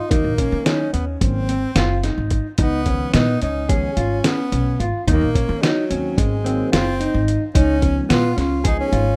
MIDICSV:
0, 0, Header, 1, 6, 480
1, 0, Start_track
1, 0, Tempo, 551471
1, 94, Time_signature, 9, 3, 24, 8
1, 7973, End_track
2, 0, Start_track
2, 0, Title_t, "Clean electric guitar"
2, 0, Program_c, 0, 27
2, 100, Note_on_c, 0, 63, 76
2, 284, Note_off_c, 0, 63, 0
2, 339, Note_on_c, 0, 61, 61
2, 523, Note_off_c, 0, 61, 0
2, 576, Note_on_c, 0, 63, 70
2, 762, Note_off_c, 0, 63, 0
2, 819, Note_on_c, 0, 61, 61
2, 1189, Note_off_c, 0, 61, 0
2, 1296, Note_on_c, 0, 60, 69
2, 1481, Note_off_c, 0, 60, 0
2, 1535, Note_on_c, 0, 65, 70
2, 1721, Note_off_c, 0, 65, 0
2, 1774, Note_on_c, 0, 63, 56
2, 2146, Note_off_c, 0, 63, 0
2, 2255, Note_on_c, 0, 63, 74
2, 2441, Note_off_c, 0, 63, 0
2, 2492, Note_on_c, 0, 61, 61
2, 2678, Note_off_c, 0, 61, 0
2, 2730, Note_on_c, 0, 59, 65
2, 2917, Note_off_c, 0, 59, 0
2, 2976, Note_on_c, 0, 61, 62
2, 3161, Note_off_c, 0, 61, 0
2, 3210, Note_on_c, 0, 68, 76
2, 3398, Note_off_c, 0, 68, 0
2, 3452, Note_on_c, 0, 65, 66
2, 3639, Note_off_c, 0, 65, 0
2, 3692, Note_on_c, 0, 61, 69
2, 3878, Note_off_c, 0, 61, 0
2, 3937, Note_on_c, 0, 61, 60
2, 4121, Note_off_c, 0, 61, 0
2, 4176, Note_on_c, 0, 65, 58
2, 4361, Note_off_c, 0, 65, 0
2, 4420, Note_on_c, 0, 63, 81
2, 4603, Note_off_c, 0, 63, 0
2, 4656, Note_on_c, 0, 61, 65
2, 4841, Note_off_c, 0, 61, 0
2, 4893, Note_on_c, 0, 63, 68
2, 5079, Note_off_c, 0, 63, 0
2, 5141, Note_on_c, 0, 61, 64
2, 5510, Note_off_c, 0, 61, 0
2, 5609, Note_on_c, 0, 60, 66
2, 5797, Note_off_c, 0, 60, 0
2, 5852, Note_on_c, 0, 65, 77
2, 6039, Note_off_c, 0, 65, 0
2, 6094, Note_on_c, 0, 63, 62
2, 6466, Note_off_c, 0, 63, 0
2, 6568, Note_on_c, 0, 63, 80
2, 6756, Note_off_c, 0, 63, 0
2, 6809, Note_on_c, 0, 61, 64
2, 6997, Note_off_c, 0, 61, 0
2, 7042, Note_on_c, 0, 59, 71
2, 7233, Note_off_c, 0, 59, 0
2, 7281, Note_on_c, 0, 61, 69
2, 7472, Note_off_c, 0, 61, 0
2, 7521, Note_on_c, 0, 68, 81
2, 7712, Note_off_c, 0, 68, 0
2, 7768, Note_on_c, 0, 65, 64
2, 7957, Note_off_c, 0, 65, 0
2, 7973, End_track
3, 0, Start_track
3, 0, Title_t, "Tenor saxophone"
3, 0, Program_c, 1, 66
3, 0, Note_on_c, 1, 63, 82
3, 88, Note_on_c, 1, 58, 95
3, 101, Note_off_c, 1, 63, 0
3, 569, Note_on_c, 1, 61, 86
3, 582, Note_off_c, 1, 58, 0
3, 800, Note_off_c, 1, 61, 0
3, 805, Note_on_c, 1, 59, 73
3, 915, Note_off_c, 1, 59, 0
3, 1040, Note_on_c, 1, 60, 88
3, 1971, Note_off_c, 1, 60, 0
3, 2262, Note_on_c, 1, 59, 88
3, 2704, Note_off_c, 1, 59, 0
3, 2733, Note_on_c, 1, 63, 91
3, 2956, Note_off_c, 1, 63, 0
3, 2978, Note_on_c, 1, 63, 81
3, 3220, Note_on_c, 1, 61, 88
3, 3233, Note_off_c, 1, 63, 0
3, 3703, Note_on_c, 1, 59, 83
3, 3716, Note_off_c, 1, 61, 0
3, 4238, Note_off_c, 1, 59, 0
3, 4423, Note_on_c, 1, 58, 93
3, 4891, Note_on_c, 1, 54, 91
3, 4904, Note_off_c, 1, 58, 0
3, 5376, Note_on_c, 1, 56, 83
3, 5389, Note_off_c, 1, 54, 0
3, 5846, Note_off_c, 1, 56, 0
3, 5851, Note_on_c, 1, 60, 95
3, 6357, Note_off_c, 1, 60, 0
3, 6567, Note_on_c, 1, 61, 95
3, 7016, Note_off_c, 1, 61, 0
3, 7063, Note_on_c, 1, 65, 96
3, 7281, Note_off_c, 1, 65, 0
3, 7300, Note_on_c, 1, 65, 81
3, 7520, Note_off_c, 1, 65, 0
3, 7539, Note_on_c, 1, 63, 93
3, 7648, Note_off_c, 1, 63, 0
3, 7658, Note_on_c, 1, 61, 100
3, 7973, Note_off_c, 1, 61, 0
3, 7973, End_track
4, 0, Start_track
4, 0, Title_t, "Tine electric piano"
4, 0, Program_c, 2, 4
4, 89, Note_on_c, 2, 58, 52
4, 89, Note_on_c, 2, 63, 61
4, 92, Note_on_c, 2, 51, 52
4, 94, Note_on_c, 2, 54, 53
4, 763, Note_off_c, 2, 58, 0
4, 763, Note_off_c, 2, 63, 0
4, 764, Note_off_c, 2, 51, 0
4, 766, Note_off_c, 2, 54, 0
4, 1051, Note_on_c, 2, 51, 56
4, 1051, Note_on_c, 2, 60, 61
4, 1052, Note_on_c, 2, 54, 51
4, 1053, Note_on_c, 2, 58, 50
4, 1340, Note_off_c, 2, 51, 0
4, 1340, Note_off_c, 2, 60, 0
4, 1341, Note_off_c, 2, 54, 0
4, 1341, Note_off_c, 2, 58, 0
4, 2492, Note_on_c, 2, 59, 63
4, 2493, Note_on_c, 2, 51, 57
4, 2495, Note_on_c, 2, 56, 53
4, 2496, Note_on_c, 2, 53, 57
4, 2828, Note_off_c, 2, 59, 0
4, 2829, Note_off_c, 2, 51, 0
4, 2830, Note_off_c, 2, 53, 0
4, 2830, Note_off_c, 2, 56, 0
4, 3224, Note_on_c, 2, 59, 73
4, 3225, Note_on_c, 2, 51, 68
4, 3226, Note_on_c, 2, 53, 58
4, 3226, Note_on_c, 2, 56, 57
4, 3386, Note_off_c, 2, 59, 0
4, 3387, Note_off_c, 2, 51, 0
4, 3387, Note_off_c, 2, 53, 0
4, 3387, Note_off_c, 2, 56, 0
4, 4412, Note_on_c, 2, 51, 57
4, 4412, Note_on_c, 2, 58, 50
4, 4418, Note_on_c, 2, 63, 64
4, 4419, Note_on_c, 2, 54, 53
4, 4580, Note_off_c, 2, 51, 0
4, 4580, Note_off_c, 2, 58, 0
4, 4583, Note_off_c, 2, 63, 0
4, 4584, Note_off_c, 2, 54, 0
4, 5132, Note_on_c, 2, 51, 61
4, 5132, Note_on_c, 2, 60, 65
4, 5134, Note_on_c, 2, 54, 48
4, 5139, Note_on_c, 2, 58, 53
4, 5606, Note_off_c, 2, 51, 0
4, 5609, Note_off_c, 2, 58, 0
4, 5610, Note_off_c, 2, 54, 0
4, 5612, Note_off_c, 2, 60, 0
4, 5617, Note_on_c, 2, 51, 60
4, 5619, Note_on_c, 2, 58, 55
4, 5620, Note_on_c, 2, 54, 57
4, 5622, Note_on_c, 2, 60, 61
4, 5902, Note_off_c, 2, 51, 0
4, 5904, Note_off_c, 2, 54, 0
4, 5904, Note_off_c, 2, 58, 0
4, 5905, Note_off_c, 2, 60, 0
4, 6810, Note_on_c, 2, 56, 54
4, 6811, Note_on_c, 2, 59, 58
4, 6814, Note_on_c, 2, 53, 63
4, 6814, Note_on_c, 2, 63, 62
4, 7147, Note_off_c, 2, 56, 0
4, 7148, Note_off_c, 2, 59, 0
4, 7149, Note_off_c, 2, 53, 0
4, 7150, Note_off_c, 2, 63, 0
4, 7533, Note_on_c, 2, 56, 63
4, 7536, Note_on_c, 2, 59, 63
4, 7537, Note_on_c, 2, 63, 73
4, 7539, Note_on_c, 2, 53, 67
4, 7869, Note_off_c, 2, 56, 0
4, 7871, Note_off_c, 2, 59, 0
4, 7871, Note_off_c, 2, 63, 0
4, 7872, Note_off_c, 2, 53, 0
4, 7973, End_track
5, 0, Start_track
5, 0, Title_t, "Upright bass"
5, 0, Program_c, 3, 32
5, 98, Note_on_c, 3, 39, 101
5, 211, Note_on_c, 3, 34, 70
5, 224, Note_off_c, 3, 39, 0
5, 400, Note_off_c, 3, 34, 0
5, 455, Note_on_c, 3, 51, 82
5, 642, Note_off_c, 3, 51, 0
5, 813, Note_on_c, 3, 39, 68
5, 1001, Note_off_c, 3, 39, 0
5, 1056, Note_on_c, 3, 32, 79
5, 1430, Note_off_c, 3, 32, 0
5, 1527, Note_on_c, 3, 30, 75
5, 1811, Note_off_c, 3, 30, 0
5, 1894, Note_on_c, 3, 32, 72
5, 2081, Note_off_c, 3, 32, 0
5, 2250, Note_on_c, 3, 37, 90
5, 2626, Note_off_c, 3, 37, 0
5, 2734, Note_on_c, 3, 46, 89
5, 2921, Note_off_c, 3, 46, 0
5, 2979, Note_on_c, 3, 37, 72
5, 3351, Note_off_c, 3, 37, 0
5, 3454, Note_on_c, 3, 32, 80
5, 3641, Note_off_c, 3, 32, 0
5, 3936, Note_on_c, 3, 35, 83
5, 4122, Note_off_c, 3, 35, 0
5, 4174, Note_on_c, 3, 32, 74
5, 4267, Note_off_c, 3, 32, 0
5, 4417, Note_on_c, 3, 39, 107
5, 4537, Note_on_c, 3, 34, 72
5, 4550, Note_off_c, 3, 39, 0
5, 4722, Note_off_c, 3, 34, 0
5, 4778, Note_on_c, 3, 51, 84
5, 4963, Note_off_c, 3, 51, 0
5, 5142, Note_on_c, 3, 39, 69
5, 5325, Note_off_c, 3, 39, 0
5, 5378, Note_on_c, 3, 32, 85
5, 5751, Note_off_c, 3, 32, 0
5, 5859, Note_on_c, 3, 30, 75
5, 6138, Note_off_c, 3, 30, 0
5, 6218, Note_on_c, 3, 32, 84
5, 6403, Note_off_c, 3, 32, 0
5, 6573, Note_on_c, 3, 37, 98
5, 6948, Note_off_c, 3, 37, 0
5, 7050, Note_on_c, 3, 46, 85
5, 7239, Note_off_c, 3, 46, 0
5, 7289, Note_on_c, 3, 37, 69
5, 7666, Note_off_c, 3, 37, 0
5, 7767, Note_on_c, 3, 32, 86
5, 7957, Note_off_c, 3, 32, 0
5, 7973, End_track
6, 0, Start_track
6, 0, Title_t, "Drums"
6, 95, Note_on_c, 9, 36, 102
6, 98, Note_on_c, 9, 42, 83
6, 182, Note_off_c, 9, 36, 0
6, 185, Note_off_c, 9, 42, 0
6, 334, Note_on_c, 9, 36, 62
6, 334, Note_on_c, 9, 42, 58
6, 421, Note_off_c, 9, 36, 0
6, 421, Note_off_c, 9, 42, 0
6, 575, Note_on_c, 9, 38, 92
6, 575, Note_on_c, 9, 42, 72
6, 662, Note_off_c, 9, 38, 0
6, 662, Note_off_c, 9, 42, 0
6, 816, Note_on_c, 9, 42, 54
6, 903, Note_off_c, 9, 42, 0
6, 1056, Note_on_c, 9, 36, 101
6, 1057, Note_on_c, 9, 42, 88
6, 1143, Note_off_c, 9, 36, 0
6, 1144, Note_off_c, 9, 42, 0
6, 1296, Note_on_c, 9, 42, 59
6, 1383, Note_off_c, 9, 42, 0
6, 1529, Note_on_c, 9, 38, 99
6, 1529, Note_on_c, 9, 42, 76
6, 1616, Note_off_c, 9, 38, 0
6, 1616, Note_off_c, 9, 42, 0
6, 1771, Note_on_c, 9, 38, 30
6, 1771, Note_on_c, 9, 42, 54
6, 1858, Note_off_c, 9, 38, 0
6, 1858, Note_off_c, 9, 42, 0
6, 2006, Note_on_c, 9, 42, 55
6, 2011, Note_on_c, 9, 36, 71
6, 2093, Note_off_c, 9, 42, 0
6, 2098, Note_off_c, 9, 36, 0
6, 2244, Note_on_c, 9, 42, 73
6, 2251, Note_on_c, 9, 36, 102
6, 2331, Note_off_c, 9, 42, 0
6, 2338, Note_off_c, 9, 36, 0
6, 2487, Note_on_c, 9, 42, 53
6, 2491, Note_on_c, 9, 36, 66
6, 2574, Note_off_c, 9, 42, 0
6, 2578, Note_off_c, 9, 36, 0
6, 2729, Note_on_c, 9, 38, 92
6, 2729, Note_on_c, 9, 42, 69
6, 2816, Note_off_c, 9, 38, 0
6, 2816, Note_off_c, 9, 42, 0
6, 2973, Note_on_c, 9, 42, 53
6, 3060, Note_off_c, 9, 42, 0
6, 3215, Note_on_c, 9, 36, 99
6, 3216, Note_on_c, 9, 42, 75
6, 3302, Note_off_c, 9, 36, 0
6, 3303, Note_off_c, 9, 42, 0
6, 3454, Note_on_c, 9, 42, 53
6, 3541, Note_off_c, 9, 42, 0
6, 3693, Note_on_c, 9, 38, 93
6, 3693, Note_on_c, 9, 42, 76
6, 3780, Note_off_c, 9, 38, 0
6, 3780, Note_off_c, 9, 42, 0
6, 3937, Note_on_c, 9, 42, 49
6, 4024, Note_off_c, 9, 42, 0
6, 4181, Note_on_c, 9, 42, 53
6, 4268, Note_off_c, 9, 42, 0
6, 4419, Note_on_c, 9, 36, 108
6, 4421, Note_on_c, 9, 42, 77
6, 4506, Note_off_c, 9, 36, 0
6, 4508, Note_off_c, 9, 42, 0
6, 4658, Note_on_c, 9, 36, 73
6, 4661, Note_on_c, 9, 42, 56
6, 4746, Note_off_c, 9, 36, 0
6, 4748, Note_off_c, 9, 42, 0
6, 4904, Note_on_c, 9, 38, 97
6, 4904, Note_on_c, 9, 42, 73
6, 4991, Note_off_c, 9, 38, 0
6, 4991, Note_off_c, 9, 42, 0
6, 5141, Note_on_c, 9, 42, 51
6, 5228, Note_off_c, 9, 42, 0
6, 5378, Note_on_c, 9, 36, 107
6, 5381, Note_on_c, 9, 42, 83
6, 5465, Note_off_c, 9, 36, 0
6, 5468, Note_off_c, 9, 42, 0
6, 5624, Note_on_c, 9, 42, 55
6, 5711, Note_off_c, 9, 42, 0
6, 5860, Note_on_c, 9, 38, 96
6, 5860, Note_on_c, 9, 42, 69
6, 5947, Note_off_c, 9, 38, 0
6, 5947, Note_off_c, 9, 42, 0
6, 6099, Note_on_c, 9, 42, 55
6, 6186, Note_off_c, 9, 42, 0
6, 6338, Note_on_c, 9, 42, 52
6, 6425, Note_off_c, 9, 42, 0
6, 6573, Note_on_c, 9, 36, 99
6, 6575, Note_on_c, 9, 42, 82
6, 6660, Note_off_c, 9, 36, 0
6, 6662, Note_off_c, 9, 42, 0
6, 6809, Note_on_c, 9, 42, 57
6, 6811, Note_on_c, 9, 36, 68
6, 6896, Note_off_c, 9, 42, 0
6, 6898, Note_off_c, 9, 36, 0
6, 7051, Note_on_c, 9, 38, 97
6, 7051, Note_on_c, 9, 42, 73
6, 7138, Note_off_c, 9, 38, 0
6, 7138, Note_off_c, 9, 42, 0
6, 7292, Note_on_c, 9, 38, 28
6, 7292, Note_on_c, 9, 42, 48
6, 7379, Note_off_c, 9, 38, 0
6, 7379, Note_off_c, 9, 42, 0
6, 7526, Note_on_c, 9, 42, 80
6, 7529, Note_on_c, 9, 36, 101
6, 7613, Note_off_c, 9, 42, 0
6, 7617, Note_off_c, 9, 36, 0
6, 7770, Note_on_c, 9, 42, 52
6, 7857, Note_off_c, 9, 42, 0
6, 7973, End_track
0, 0, End_of_file